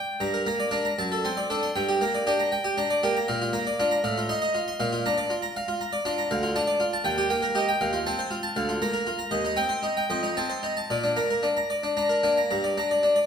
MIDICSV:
0, 0, Header, 1, 2, 480
1, 0, Start_track
1, 0, Key_signature, -2, "minor"
1, 0, Tempo, 511073
1, 206, Time_signature, 6, 3, 24, 8
1, 4520, Tempo, 502092
1, 5954, Key_signature, -2, "major"
1, 8840, Tempo, 528634
1, 12410, End_track
2, 0, Start_track
2, 0, Title_t, "Harpsichord"
2, 0, Program_c, 0, 6
2, 0, Note_on_c, 0, 79, 56
2, 191, Note_on_c, 0, 43, 67
2, 194, Note_on_c, 0, 82, 82
2, 199, Note_off_c, 0, 79, 0
2, 317, Note_on_c, 0, 70, 55
2, 327, Note_off_c, 0, 82, 0
2, 433, Note_off_c, 0, 43, 0
2, 437, Note_on_c, 0, 58, 53
2, 438, Note_on_c, 0, 82, 54
2, 450, Note_off_c, 0, 70, 0
2, 561, Note_on_c, 0, 74, 57
2, 570, Note_off_c, 0, 82, 0
2, 669, Note_on_c, 0, 62, 58
2, 669, Note_on_c, 0, 70, 60
2, 693, Note_off_c, 0, 74, 0
2, 697, Note_off_c, 0, 58, 0
2, 795, Note_on_c, 0, 82, 58
2, 807, Note_off_c, 0, 70, 0
2, 851, Note_off_c, 0, 62, 0
2, 924, Note_off_c, 0, 82, 0
2, 926, Note_on_c, 0, 42, 69
2, 926, Note_on_c, 0, 81, 68
2, 1050, Note_on_c, 0, 69, 60
2, 1055, Note_off_c, 0, 81, 0
2, 1162, Note_off_c, 0, 42, 0
2, 1170, Note_on_c, 0, 60, 53
2, 1174, Note_on_c, 0, 84, 75
2, 1178, Note_off_c, 0, 69, 0
2, 1288, Note_on_c, 0, 74, 60
2, 1300, Note_off_c, 0, 84, 0
2, 1410, Note_on_c, 0, 69, 58
2, 1413, Note_on_c, 0, 62, 54
2, 1418, Note_off_c, 0, 74, 0
2, 1425, Note_off_c, 0, 60, 0
2, 1530, Note_on_c, 0, 84, 63
2, 1539, Note_off_c, 0, 69, 0
2, 1588, Note_off_c, 0, 62, 0
2, 1650, Note_on_c, 0, 43, 73
2, 1650, Note_on_c, 0, 79, 65
2, 1653, Note_off_c, 0, 84, 0
2, 1771, Note_on_c, 0, 67, 56
2, 1780, Note_off_c, 0, 79, 0
2, 1886, Note_off_c, 0, 43, 0
2, 1890, Note_on_c, 0, 58, 53
2, 1894, Note_on_c, 0, 82, 76
2, 1900, Note_off_c, 0, 67, 0
2, 2014, Note_on_c, 0, 74, 61
2, 2021, Note_off_c, 0, 82, 0
2, 2130, Note_on_c, 0, 67, 61
2, 2132, Note_on_c, 0, 62, 62
2, 2140, Note_off_c, 0, 74, 0
2, 2144, Note_off_c, 0, 58, 0
2, 2248, Note_on_c, 0, 82, 56
2, 2258, Note_off_c, 0, 67, 0
2, 2367, Note_on_c, 0, 79, 69
2, 2377, Note_off_c, 0, 82, 0
2, 2385, Note_off_c, 0, 62, 0
2, 2484, Note_on_c, 0, 67, 61
2, 2496, Note_off_c, 0, 79, 0
2, 2607, Note_on_c, 0, 62, 59
2, 2607, Note_on_c, 0, 82, 61
2, 2615, Note_off_c, 0, 67, 0
2, 2727, Note_on_c, 0, 74, 65
2, 2736, Note_off_c, 0, 82, 0
2, 2849, Note_on_c, 0, 67, 61
2, 2850, Note_on_c, 0, 58, 62
2, 2855, Note_off_c, 0, 74, 0
2, 2861, Note_off_c, 0, 62, 0
2, 2973, Note_on_c, 0, 82, 65
2, 2975, Note_off_c, 0, 67, 0
2, 3084, Note_on_c, 0, 77, 69
2, 3086, Note_on_c, 0, 46, 79
2, 3089, Note_off_c, 0, 58, 0
2, 3091, Note_off_c, 0, 82, 0
2, 3209, Note_on_c, 0, 65, 63
2, 3211, Note_off_c, 0, 77, 0
2, 3317, Note_on_c, 0, 58, 59
2, 3317, Note_on_c, 0, 82, 78
2, 3318, Note_off_c, 0, 46, 0
2, 3334, Note_off_c, 0, 65, 0
2, 3446, Note_on_c, 0, 74, 67
2, 3447, Note_off_c, 0, 82, 0
2, 3565, Note_on_c, 0, 65, 72
2, 3566, Note_on_c, 0, 62, 63
2, 3572, Note_off_c, 0, 74, 0
2, 3573, Note_off_c, 0, 58, 0
2, 3673, Note_on_c, 0, 82, 69
2, 3691, Note_off_c, 0, 65, 0
2, 3738, Note_off_c, 0, 62, 0
2, 3795, Note_on_c, 0, 45, 85
2, 3796, Note_on_c, 0, 77, 71
2, 3799, Note_off_c, 0, 82, 0
2, 3922, Note_on_c, 0, 65, 66
2, 3926, Note_off_c, 0, 77, 0
2, 4030, Note_off_c, 0, 45, 0
2, 4031, Note_on_c, 0, 63, 61
2, 4032, Note_on_c, 0, 84, 86
2, 4047, Note_off_c, 0, 65, 0
2, 4150, Note_on_c, 0, 75, 68
2, 4162, Note_off_c, 0, 84, 0
2, 4269, Note_on_c, 0, 65, 66
2, 4281, Note_off_c, 0, 75, 0
2, 4287, Note_off_c, 0, 63, 0
2, 4395, Note_on_c, 0, 84, 66
2, 4400, Note_off_c, 0, 65, 0
2, 4505, Note_on_c, 0, 46, 84
2, 4509, Note_on_c, 0, 77, 78
2, 4517, Note_off_c, 0, 84, 0
2, 4628, Note_on_c, 0, 65, 67
2, 4641, Note_off_c, 0, 77, 0
2, 4746, Note_off_c, 0, 46, 0
2, 4755, Note_on_c, 0, 62, 62
2, 4755, Note_on_c, 0, 82, 89
2, 4761, Note_off_c, 0, 65, 0
2, 4868, Note_on_c, 0, 74, 70
2, 4884, Note_off_c, 0, 82, 0
2, 4986, Note_on_c, 0, 65, 71
2, 5000, Note_off_c, 0, 74, 0
2, 5010, Note_off_c, 0, 62, 0
2, 5104, Note_on_c, 0, 82, 68
2, 5119, Note_off_c, 0, 65, 0
2, 5238, Note_off_c, 0, 82, 0
2, 5240, Note_on_c, 0, 77, 79
2, 5352, Note_on_c, 0, 65, 70
2, 5366, Note_off_c, 0, 77, 0
2, 5473, Note_on_c, 0, 82, 66
2, 5481, Note_off_c, 0, 65, 0
2, 5585, Note_on_c, 0, 74, 76
2, 5602, Note_off_c, 0, 82, 0
2, 5706, Note_on_c, 0, 62, 67
2, 5708, Note_on_c, 0, 65, 75
2, 5717, Note_off_c, 0, 74, 0
2, 5829, Note_on_c, 0, 82, 73
2, 5838, Note_off_c, 0, 65, 0
2, 5949, Note_off_c, 0, 62, 0
2, 5951, Note_off_c, 0, 82, 0
2, 5952, Note_on_c, 0, 38, 86
2, 5952, Note_on_c, 0, 77, 84
2, 6066, Note_on_c, 0, 65, 69
2, 6078, Note_off_c, 0, 77, 0
2, 6184, Note_off_c, 0, 38, 0
2, 6188, Note_on_c, 0, 62, 66
2, 6190, Note_on_c, 0, 81, 91
2, 6195, Note_off_c, 0, 65, 0
2, 6299, Note_on_c, 0, 74, 71
2, 6317, Note_off_c, 0, 81, 0
2, 6419, Note_on_c, 0, 65, 74
2, 6432, Note_off_c, 0, 74, 0
2, 6442, Note_off_c, 0, 62, 0
2, 6548, Note_on_c, 0, 81, 76
2, 6552, Note_off_c, 0, 65, 0
2, 6654, Note_on_c, 0, 39, 91
2, 6656, Note_on_c, 0, 79, 105
2, 6670, Note_off_c, 0, 81, 0
2, 6782, Note_on_c, 0, 67, 73
2, 6789, Note_off_c, 0, 79, 0
2, 6893, Note_off_c, 0, 39, 0
2, 6898, Note_on_c, 0, 58, 63
2, 6900, Note_on_c, 0, 79, 66
2, 6911, Note_off_c, 0, 67, 0
2, 7018, Note_on_c, 0, 70, 75
2, 7030, Note_off_c, 0, 79, 0
2, 7137, Note_on_c, 0, 67, 69
2, 7142, Note_on_c, 0, 63, 60
2, 7149, Note_off_c, 0, 70, 0
2, 7155, Note_off_c, 0, 58, 0
2, 7267, Note_on_c, 0, 79, 73
2, 7269, Note_off_c, 0, 67, 0
2, 7318, Note_off_c, 0, 63, 0
2, 7385, Note_on_c, 0, 39, 90
2, 7386, Note_on_c, 0, 77, 76
2, 7389, Note_off_c, 0, 79, 0
2, 7499, Note_on_c, 0, 65, 67
2, 7515, Note_off_c, 0, 77, 0
2, 7622, Note_off_c, 0, 39, 0
2, 7630, Note_on_c, 0, 81, 91
2, 7632, Note_off_c, 0, 65, 0
2, 7632, Note_on_c, 0, 60, 60
2, 7748, Note_on_c, 0, 72, 66
2, 7757, Note_off_c, 0, 81, 0
2, 7860, Note_on_c, 0, 65, 72
2, 7876, Note_off_c, 0, 72, 0
2, 7884, Note_off_c, 0, 60, 0
2, 7979, Note_on_c, 0, 81, 71
2, 7992, Note_off_c, 0, 65, 0
2, 8105, Note_off_c, 0, 81, 0
2, 8106, Note_on_c, 0, 38, 84
2, 8108, Note_on_c, 0, 77, 75
2, 8227, Note_on_c, 0, 65, 70
2, 8234, Note_off_c, 0, 77, 0
2, 8340, Note_off_c, 0, 38, 0
2, 8349, Note_on_c, 0, 58, 58
2, 8350, Note_on_c, 0, 82, 92
2, 8354, Note_off_c, 0, 65, 0
2, 8461, Note_on_c, 0, 70, 73
2, 8476, Note_off_c, 0, 82, 0
2, 8587, Note_on_c, 0, 65, 69
2, 8594, Note_off_c, 0, 70, 0
2, 8604, Note_off_c, 0, 58, 0
2, 8702, Note_on_c, 0, 82, 65
2, 8719, Note_off_c, 0, 65, 0
2, 8822, Note_on_c, 0, 39, 85
2, 8822, Note_on_c, 0, 75, 73
2, 8832, Note_off_c, 0, 82, 0
2, 8944, Note_on_c, 0, 63, 60
2, 8953, Note_off_c, 0, 75, 0
2, 9051, Note_on_c, 0, 60, 58
2, 9055, Note_on_c, 0, 79, 82
2, 9057, Note_off_c, 0, 39, 0
2, 9073, Note_off_c, 0, 63, 0
2, 9167, Note_on_c, 0, 72, 60
2, 9187, Note_off_c, 0, 79, 0
2, 9290, Note_on_c, 0, 63, 65
2, 9301, Note_off_c, 0, 72, 0
2, 9308, Note_off_c, 0, 60, 0
2, 9420, Note_on_c, 0, 79, 63
2, 9467, Note_off_c, 0, 63, 0
2, 9537, Note_on_c, 0, 41, 74
2, 9540, Note_on_c, 0, 75, 73
2, 9541, Note_off_c, 0, 79, 0
2, 9655, Note_on_c, 0, 63, 60
2, 9667, Note_off_c, 0, 75, 0
2, 9773, Note_off_c, 0, 41, 0
2, 9783, Note_on_c, 0, 81, 74
2, 9785, Note_off_c, 0, 63, 0
2, 9785, Note_on_c, 0, 60, 57
2, 9897, Note_on_c, 0, 72, 61
2, 9910, Note_off_c, 0, 81, 0
2, 10019, Note_on_c, 0, 63, 55
2, 10027, Note_off_c, 0, 72, 0
2, 10038, Note_off_c, 0, 60, 0
2, 10145, Note_on_c, 0, 81, 55
2, 10149, Note_off_c, 0, 63, 0
2, 10267, Note_off_c, 0, 81, 0
2, 10268, Note_on_c, 0, 46, 66
2, 10269, Note_on_c, 0, 74, 63
2, 10388, Note_on_c, 0, 62, 53
2, 10395, Note_off_c, 0, 74, 0
2, 10502, Note_off_c, 0, 46, 0
2, 10504, Note_on_c, 0, 58, 54
2, 10506, Note_on_c, 0, 82, 72
2, 10515, Note_off_c, 0, 62, 0
2, 10632, Note_on_c, 0, 70, 54
2, 10635, Note_off_c, 0, 82, 0
2, 10744, Note_on_c, 0, 62, 61
2, 10759, Note_off_c, 0, 70, 0
2, 10761, Note_off_c, 0, 58, 0
2, 10869, Note_on_c, 0, 82, 59
2, 10878, Note_off_c, 0, 62, 0
2, 10991, Note_on_c, 0, 74, 59
2, 10999, Note_off_c, 0, 82, 0
2, 11113, Note_on_c, 0, 62, 57
2, 11121, Note_off_c, 0, 74, 0
2, 11224, Note_off_c, 0, 62, 0
2, 11235, Note_on_c, 0, 62, 50
2, 11235, Note_on_c, 0, 82, 53
2, 11348, Note_on_c, 0, 70, 57
2, 11366, Note_off_c, 0, 82, 0
2, 11465, Note_off_c, 0, 62, 0
2, 11476, Note_on_c, 0, 62, 54
2, 11477, Note_on_c, 0, 58, 52
2, 11485, Note_off_c, 0, 70, 0
2, 11603, Note_on_c, 0, 82, 55
2, 11610, Note_off_c, 0, 62, 0
2, 11712, Note_off_c, 0, 82, 0
2, 11723, Note_on_c, 0, 82, 71
2, 11725, Note_off_c, 0, 58, 0
2, 11726, Note_on_c, 0, 43, 60
2, 11845, Note_on_c, 0, 74, 50
2, 11852, Note_off_c, 0, 82, 0
2, 11959, Note_off_c, 0, 43, 0
2, 11967, Note_on_c, 0, 62, 41
2, 11970, Note_on_c, 0, 82, 46
2, 11972, Note_off_c, 0, 74, 0
2, 12090, Note_on_c, 0, 74, 49
2, 12094, Note_off_c, 0, 82, 0
2, 12189, Note_off_c, 0, 62, 0
2, 12200, Note_on_c, 0, 62, 47
2, 12212, Note_off_c, 0, 74, 0
2, 12315, Note_on_c, 0, 74, 49
2, 12325, Note_off_c, 0, 62, 0
2, 12410, Note_off_c, 0, 74, 0
2, 12410, End_track
0, 0, End_of_file